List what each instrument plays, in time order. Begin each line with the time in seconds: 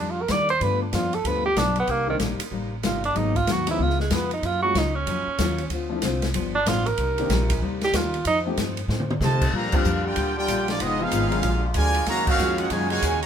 Already playing: upright bass F2, steel-string acoustic guitar D#3 G3
0.00 steel-string acoustic guitar A#3 D4, tenor saxophone D4
0.10 tenor saxophone F4
0.22 tenor saxophone A#4
0.28 upright bass D#2, steel-string acoustic guitar D#3 G3 A#3 D4, tenor saxophone D5, kick, snare, hi-hat pedal, ride
0.49 tenor saxophone C5, ride
0.59 steel-string acoustic guitar G2 F3 B3 D4, upright bass G2, grand piano D3 G3 A3 B3 F4, tenor saxophone B4, kick, ride
0.82 tenor saxophone D4
0.92 upright bass F2, steel-string acoustic guitar G2 F3 B3 D4, tenor saxophone F4, kick, snare, hi-hat pedal, ride
1.13 tenor saxophone A4, ride
1.24 upright bass D2, steel-string acoustic guitar G2 F3 B3, grand piano D3 G3 A3 B3 F4, tenor saxophone B4, kick, ride
1.28 steel-string acoustic guitar D4
1.46 tenor saxophone G4
1.56 upright bass B1, steel-string acoustic guitar G2 F3 B3 D4, tenor saxophone D4, kick, snare, hi-hat pedal, ride
1.76 tenor saxophone B3, ride
1.87 upright bass C2, steel-string acoustic guitar C3 G3 A#3 D#4, tenor saxophone A#3, kick, ride
2.07 grand piano D#3 G3 A#3 C4 D4, tenor saxophone D#3
2.19 upright bass A#1, steel-string acoustic guitar C3 G3 A#3 D#4, kick, snare, hi-hat pedal, ride
2.40 muted upright bass stroke, ride
2.50 upright bass A1, steel-string acoustic guitar C3 G3 A#3 D#4, kick
2.82 upright bass G1, steel-string acoustic guitar C3 G3 A#3 D#4, tenor saxophone F4, kick, snare, hi-hat pedal, ride
3.04 tenor saxophone D4, ride
3.14 upright bass G#1, steel-string acoustic guitar G#2 F#3 B3 D#4, grand piano F#3 G#3 A#3 B3 D#4, tenor saxophone D#4, kick, ride
3.36 tenor saxophone F4, kick, ride
3.46 upright bass D#2, steel-string acoustic guitar G#2 F#3 B3 D#4, kick, snare, hi-hat pedal, ride
3.52 tenor saxophone F#4
3.67 grand piano F3 G#3 B3 C#4 D#4, ride
3.71 tenor saxophone E4
3.77 upright bass C#2, steel-string acoustic guitar C#3 G#3 B3 F4, kick
3.82 tenor saxophone F4
3.90 snare
4.00 tenor saxophone G#3, snare
4.10 upright bass F2, steel-string acoustic guitar C#3 G#3 B3 F4, tenor saxophone B3, kick, snare, hi-hat pedal, ride
4.31 tenor saxophone D#4, ride
4.43 upright bass F#2, steel-string acoustic guitar F#3 A#3 C#4 F4, tenor saxophone F4, kick, ride
4.62 grand piano F#3 G#3 A#3 C#4 F4, tenor saxophone F#4
4.73 upright bass C#2, steel-string acoustic guitar F#3 A#3 C#4 F4, kick, snare, hi-hat pedal, ride
4.78 tenor saxophone D#4
4.95 tenor saxophone C#4
5.06 upright bass F2, steel-string acoustic guitar F#3 A#3 C#4 F4, kick, ride
5.27 muted upright bass stroke
5.38 upright bass D#2, steel-string acoustic guitar F#3 A#3 C#4 F4, kick, snare, hi-hat pedal, ride
5.58 ride
5.70 upright bass D2, steel-string acoustic guitar D3 A3 C4 F4, kick, ride
5.89 grand piano F3 A3 C4 D4 E4
6.02 upright bass C2, steel-string acoustic guitar D3 A3 C4 F4, kick, snare, hi-hat pedal, ride
6.22 snare, ride
6.34 upright bass G1, steel-string acoustic guitar G2 F3 B3 D4, kick, ride
6.55 tenor saxophone D4
6.66 upright bass A1, steel-string acoustic guitar G2 F3 B3 D4, tenor saxophone F4, kick, snare, hi-hat pedal, ride
6.86 tenor saxophone A#4, ride
6.98 upright bass C2, steel-string acoustic guitar C3 G3 A#3 D#4, kick, ride
7.18 grand piano D#3 A#3 C4 D4 G4, ride
7.29 upright bass A#1, steel-string acoustic guitar C3 G3 A#3 D#4, kick, snare, hi-hat pedal, ride
7.50 kick, ride
7.61 upright bass D2, steel-string acoustic guitar C3 G3 A#3 D#4, kick
7.81 tenor saxophone G4, snare, ride
7.93 upright bass D#2, steel-string acoustic guitar C3 G3 A#3 D#4, tenor saxophone F4, kick, snare, hi-hat pedal, ride
8.14 ride
8.24 steel-string acoustic guitar F2 D#3 A3 C4, upright bass F2, tenor saxophone D#4, kick, ride
8.46 grand piano F3 A3 C4 D#4 G4
8.56 steel-string acoustic guitar F2 D#3 A3 C4, upright bass G2, kick, snare, hi-hat pedal, ride
8.77 ride
8.88 steel-string acoustic guitar F2 D#3 A3 C4, upright bass A2, snare
9.00 mid tom
9.11 mid tom
9.20 steel-string acoustic guitar F2 D#3 A3 C4, upright bass C3, trombone section C3 D#3 A3, trumpet section F4 C5 D#5 A5, snare, hi-hat pedal
9.41 kick, crash
9.52 steel-string acoustic guitar A#2 G3 D4 F4, upright bass A#2, trombone section D3 F3 G3 A#3 F4, trumpet section D5 A#5, kick
9.56 trumpet section G4 F5
9.72 grand piano F3 A#3 C4 D4 G4, trombone section G3 D4 F4, trumpet section D4 G4 A#4 F5, muted upright bass stroke, kick, crash
9.84 upright bass F2, steel-string acoustic guitar A#2 G3 D4 F4, hi-hat pedal
10.04 trombone section G3 D4 G4, trumpet section F4 A#4 D5 G5
10.16 upright bass D2, steel-string acoustic guitar A#2 G3 D4 F4, kick, ride
10.36 trombone section G3 D4 G4, trumpet section F4 A#4 D5 G5
10.48 upright bass A#1, steel-string acoustic guitar A#2 G3 D4 F4, kick, hi-hat pedal, ride
10.68 trombone section F3 G3 D4, trumpet section A#3 F4 G4 D5, snare, ride
10.80 upright bass F1, trombone section D#3 G#3 B3 D#4, steel-string acoustic guitar F3 B3 D#4 G#4, trumpet section B3 F4 G#4 D#5, kick, ride
10.99 grand piano F3 G#3 B3 D#4 F4, trombone section G#3 B3 F4, trumpet section D#4 G#4 B4 F5
11.11 upright bass G#1, steel-string acoustic guitar F3 B3 D#4 G#4, kick, hi-hat pedal, ride
11.31 grand piano F#3 G#3 A#3 D4 F4, ride
11.43 upright bass A#1, steel-string acoustic guitar A#2 G#3 D4 F#4, trombone section D3 G#3 A#3 F4, kick, ride
11.74 upright bass D2, steel-string acoustic guitar A#2 G#3 D4 F#4, trombone section D3 F3 G#3, trumpet section F4 A#4 D5 G#5, kick, hi-hat pedal, ride
11.95 ride
12.06 upright bass D#2, trombone section C#3 D#3 F#3 A#3 D#4, steel-string acoustic guitar D#3 G#3 C#4 F#4, trumpet section F#4 C#5 F5 A#5, kick, snare, ride
12.27 trombone section A#3 C#4 F#4, trumpet section C#4 F#4 A#4 F5, kick, crash
12.38 upright bass F2, steel-string acoustic guitar D#3 G#3 C#4 F#4, grand piano G#3 A#3 C#4 F4 F#4, hi-hat pedal
12.57 trombone section A#3 C#4 F#4, trumpet section C#4 F4 A#4 F#5, ride
12.68 upright bass F#2, trombone section A#2 C#3 G#3, steel-string acoustic guitar D#3 G#3 C#4, trumpet section F#4 C#5 F5 F#5 G#5, kick, ride
12.73 steel-string acoustic guitar F#4
12.90 trombone section A#2 C#3 G#3, trumpet section F#4 C#5 F5 G#5, ride
13.02 upright bass D#2, steel-string acoustic guitar D#3 G#3 C#4 F#4, kick, hi-hat pedal, ride
13.22 trumpet section F#4 C#5 F5 A#5, ride